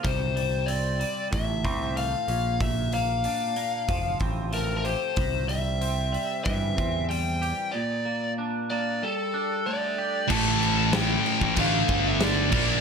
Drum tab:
CC |----------------|----------------|----------------|----------------|
HH |o-o-o-o-o-o-o-o-|o-o-o-o-o-o-o-o-|o-o-o-o-o-o-o-o-|----------------|
SD |----------------|----------------|----------------|----------------|
BD |o-------o-o-----|o-------o-o-----|o-------o-o-----|----------------|

CC |x-x-x-x-x-x-x-x-|
HH |----------------|
SD |----o-------o---|
BD |o------oo-o---o-|